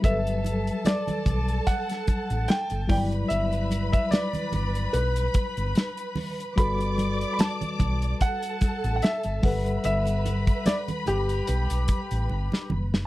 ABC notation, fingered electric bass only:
X:1
M:4/4
L:1/16
Q:"Swing 16ths" 1/4=73
K:G
V:1 name="Fingered electric bass" clef=bass
G,,,4 z2 B,,,2 z3 A,,, z G,,, G,,,2 | G,,,4 z2 G,,,2 B,,,2 z G,,, z4 | G,,,4 z2 B,,,2 z3 A,,, z G,,, G,,,2 | G,,,4 z2 G,,,2 B,,, B,,, z A,,, G,,, z F,,,2 |]